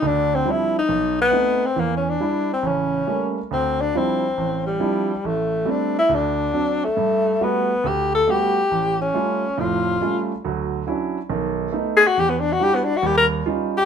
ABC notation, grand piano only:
X:1
M:4/4
L:1/8
Q:"Swing" 1/4=138
K:Aphr
V:1 name="Grand piano"
[D,,D,]2 [F,G,CDE] z =B,,,2 [A,=B,C^D] z | [E,,E,]2 [G,DE] z [A,,,^C,]2 [G,A,B,^C] z | D,,2 [F,G,CDE] z A,,,2 [F,G,CDE] z | A,,,2 [G,A,C] z D,,2 [^F,CD] z |
G,,2 [G,A,=B,^F] z D,,2 [G,A,B,F] z | A,,,2 [G,A,^C^E] z [^E,,,A,,]2 [G,A,CE] z | [D,,^F,]2 [F,^CDE] z [=B,,,^D,]2 [A,=B,^D] z | E,,2 [G,DE^F] z [_E,,G,]2 [G,_D_E=F] z |]